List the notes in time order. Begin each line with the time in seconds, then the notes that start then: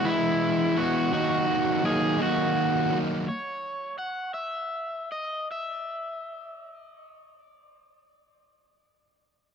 0.04 E3 G#3 B3 E4
0.76 G#3 B3 E4 F#4
1.12 D#3 F#3 A#3 D#4 F#4
1.46 F#3 A#3 D#4
1.83 D#3 F#3 A#3 D#4 G#4
2.18 D#3 F#3 A#3 D#4
2.22 F#4
2.90 F#3 A#3 D#4
3.28 C#5
3.98 F#5
4.34 E5
5.12 D#5
5.51 E5